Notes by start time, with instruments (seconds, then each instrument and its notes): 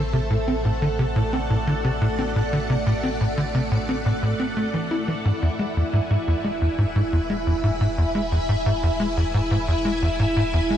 Already playing: analog synth bass A1, string machine A3 A4 C5 E5
0.13 analog synth bass C3
0.30 analog synth bass A2
0.48 analog synth bass C4, string machine F#5
0.65 analog synth bass A2
0.82 analog synth bass D3
0.99 analog synth bass C3
1.11 string machine D5
1.16 analog synth bass A2
1.33 analog synth bass C4
1.50 analog synth bass A2
1.67 analog synth bass D3
1.84 analog synth bass C3
2.01 analog synth bass A2
2.19 analog synth bass C4
2.36 analog synth bass A2
2.53 analog synth bass D3
2.70 analog synth bass C3
2.86 analog synth bass A2
3.04 analog synth bass C4
3.21 analog synth bass A2
3.38 analog synth bass D3
3.55 analog synth bass C3
3.72 analog synth bass A2
3.89 analog synth bass C4
4.06 analog synth bass A2
4.23 analog synth bass A2
4.40 analog synth bass C4
4.57 analog synth bass A3
4.74 analog synth bass E3
4.91 analog synth bass E4
5.08 analog synth bass E3
5.25 analog synth bass E1 G#2, string machine E4
5.42 analog synth bass E2, string machine E5
5.59 analog synth bass G#3
5.77 analog synth bass E2
5.81 string machine G#5
5.93 analog synth bass G#2
6.10 analog synth bass G#2
6.28 analog synth bass E2
6.44 analog synth bass G#3
6.61 analog synth bass E2
6.78 analog synth bass G#2
6.85 string machine B5
6.96 analog synth bass G#2
7.13 analog synth bass E2
7.30 analog synth bass G#3
7.47 analog synth bass E2
7.64 analog synth bass G#2
7.81 analog synth bass G#2
7.98 analog synth bass E2
8.15 analog synth bass G#3
8.32 analog synth bass E2
8.49 analog synth bass G#2
8.66 analog synth bass G#2
8.83 analog synth bass E2
9.00 analog synth bass G#3
9.17 analog synth bass E2
9.34 analog synth bass G#2
9.51 analog synth bass G#2
9.68 analog synth bass E2
9.85 analog synth bass G#3
10.02 analog synth bass E2
10.19 analog synth bass G#2
10.36 analog synth bass G#2
10.53 analog synth bass E2
10.70 analog synth bass G#3